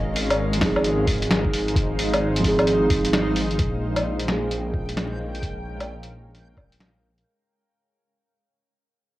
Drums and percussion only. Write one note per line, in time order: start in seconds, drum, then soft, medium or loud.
0.16 open hi-hat medium
0.30 closed hi-hat medium
0.30 low woodblock medium
0.53 closed hi-hat medium
0.61 kick loud
0.61 snare loud
0.61 open hi-hat medium
0.76 low woodblock medium
0.84 closed hi-hat medium
1.07 kick loud
1.07 open hi-hat medium
1.22 closed hi-hat medium
1.30 snare loud
1.30 closed hi-hat medium
1.44 kick medium
1.53 open hi-hat medium
1.68 closed hi-hat soft
1.76 kick loud
1.76 closed hi-hat medium
1.99 open hi-hat medium
2.13 closed hi-hat medium
2.13 low woodblock medium
2.36 closed hi-hat medium
2.44 kick medium
2.44 open hi-hat medium
2.59 closed hi-hat soft
2.59 low woodblock medium
2.67 closed hi-hat medium
2.90 kick loud
2.90 open hi-hat medium
3.05 closed hi-hat medium
3.13 snare loud
3.13 closed hi-hat medium
3.36 open hi-hat medium
3.51 closed hi-hat soft
3.59 kick loud
3.59 closed hi-hat medium
3.96 closed hi-hat medium
3.96 low woodblock medium
4.20 closed hi-hat medium
4.28 snare loud
4.51 closed hi-hat medium
4.74 kick loud
4.89 closed hi-hat medium
4.97 snare loud
4.97 closed hi-hat medium
5.35 closed hi-hat soft
5.42 kick loud
5.42 closed hi-hat medium
5.80 closed hi-hat medium
5.80 low woodblock medium
6.03 closed hi-hat medium
6.35 closed hi-hat soft
6.57 kick loud
6.57 low woodblock soft
6.72 closed hi-hat medium
6.80 snare loud
6.80 closed hi-hat medium
7.18 closed hi-hat soft